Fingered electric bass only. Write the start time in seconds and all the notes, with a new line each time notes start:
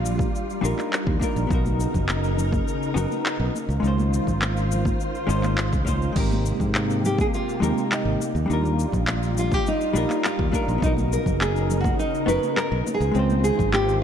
Already playing: A#1
0.63 A#1
1.07 D#2
1.36 A#1
1.50 B1
1.94 F#1
2.96 F#1
3.40 B1
3.69 C#2
3.83 C#2
4.27 G#1
5.29 G#1
5.73 C#2
6.16 G#1
6.60 G#2
7.62 D#2
8.05 G#1
8.35 D#2
8.50 D#2
8.93 A#1
9.95 A#1
10.39 D#2
10.68 A#1
10.82 B1
11.26 F#1
12.28 F#1
12.72 B1
13.00 C#2
13.15 C#2
13.59 G#1